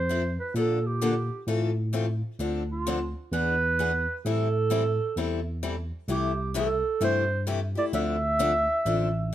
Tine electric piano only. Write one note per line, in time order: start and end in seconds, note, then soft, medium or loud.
0.00 0.36 F2 medium
0.54 1.29 A#2 medium
1.47 2.21 A2 medium
2.39 3.13 D2 medium
3.32 4.06 E2 medium
4.25 4.99 A2 medium
5.16 5.90 E2 medium
6.08 6.82 C2 medium
7.01 7.75 G2 medium
7.93 8.67 D2 medium
8.86 9.35 A1 medium